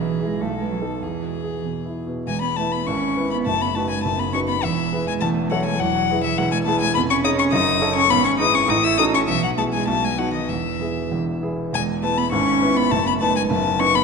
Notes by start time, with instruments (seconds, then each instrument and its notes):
Already playing: grand piano B1, cello E3, violin G#4
0.01 grand piano B3
0.20 grand piano E4 G#4
0.26 cello G#3
0.41 grand piano B1, cello A3, violin A4
0.57 cello G#3
0.61 grand piano B3
0.71 cello F#3
0.81 grand piano D#4 A4
1.01 grand piano E2, cello E3, violin G#4
1.23 grand piano B2
1.44 grand piano G#4
1.65 grand piano B2
1.85 grand piano E4
2.07 grand piano B2
2.26 grand piano E1 E2, cello G#3, violin G#5
2.41 cello B3, violin B5
2.56 cello A3, grand piano B3 E4 B4, violin A5
2.72 cello B3, violin B5
2.86 grand piano G#1 G#2, cello C#4, violin C#6
3.16 grand piano B3 E4 B4
3.31 cello B3, violin B5
3.46 grand piano F#1 F#2, cello A3, violin A5
3.60 cello B3, violin B5
3.75 cello A3, grand piano D#4 F#4 B4, violin A5
3.89 cello G#3, violin G#5
4.03 grand piano F#1 F#2, cello A3, violin A5
4.17 cello B3, violin B5
4.32 cello C#4, grand piano D#4 F#4 B4, violin C#6
4.48 cello B3, violin B5
4.61 grand piano E1 E2, cello E3, violin E5
4.92 grand piano E4 G#4 B4
5.07 cello G#3, violin G#5
5.21 grand piano E1 E2, cello A3, violin A5
5.50 cello F#3, grand piano E4 A4 C#5, violin F#5
5.65 cello G#3, violin G#5
5.79 grand piano E1 E2, cello F#3, violin F#5
6.10 grand piano E4 G#4 B4
6.23 cello E3, violin E5
6.37 grand piano E1 E2, cello F#3, violin F#5
6.52 cello G#3, violin G#5
6.66 cello A3, grand piano E4 G#4 B4, violin A5
6.80 cello G#3, violin G#5
6.95 grand piano F1 F2, cello B3, violin B5
7.09 cello C#4, violin C#6
7.24 grand piano C#4 G#4 C#5, cello D#4, violin D#6
7.37 cello C#4, violin C#6
7.52 grand piano F#1 F#2, cello D#4, violin D#6
7.81 grand piano C#4 A4 C#5
7.95 cello C#4, violin C#6
8.09 grand piano G#1 G#2, cello B3, violin B5
8.24 cello C#4, violin C#6
8.38 cello D#4, grand piano E4 G#4 B4, violin D#6
8.53 cello C#4, violin C#6
8.68 grand piano A1 A2, cello D#4, violin D#6
8.83 cello E4, violin E6
8.98 grand piano C#4 F#4 A4, cello D#4, violin D#6
9.13 cello C#4, violin C#6
9.27 grand piano B1 B2, cello E3, violin E5
9.41 cello F#3, violin F#5
9.57 cello A3, grand piano B3 E4 G#4, violin A5
9.71 cello G#3, violin G#5
9.86 grand piano B1 B2, cello A3, violin A5
10.01 cello G#3, violin G#5
10.16 cello F#3, grand piano B3 D#4 F#4, violin F#5
10.32 cello D#3, violin D#5
10.48 grand piano E1 E2, cello E3, violin E5
10.80 grand piano B3 E4 G#4
11.11 grand piano E1 E2
11.42 grand piano B3 E4 G#4
11.73 grand piano E1 E2, cello G#3, violin G#5
12.01 cello A3, grand piano B3 E4 B4, violin A5
12.17 cello B3, violin B5
12.31 grand piano G#1 G#2, cello C#4, violin C#6
12.62 grand piano B3 E4 B4
12.75 cello B3, violin B5
12.91 grand piano F#1 F#2, cello A3, violin A5
13.06 cello B3, violin B5
13.21 cello A3, grand piano B3 D#4 B4, violin A5
13.36 cello G#3, violin G#5
13.49 grand piano F#1 F#2, cello A3, violin A5
13.79 grand piano B3 D#4 B4, cello C#4, violin C#6
13.94 cello B3, violin B5